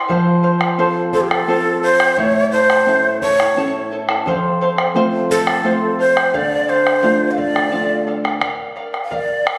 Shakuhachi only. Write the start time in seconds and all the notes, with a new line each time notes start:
1.14 A4
1.21 G4
1.29 A4
1.83 C5
2.17 C#5
2.51 C5
3.22 C#5
5.31 A4
6.00 C5
6.35 D5
6.69 C5
7.31 F5
7.39 D5
9.04 F5
9.13 D5
9.48 F5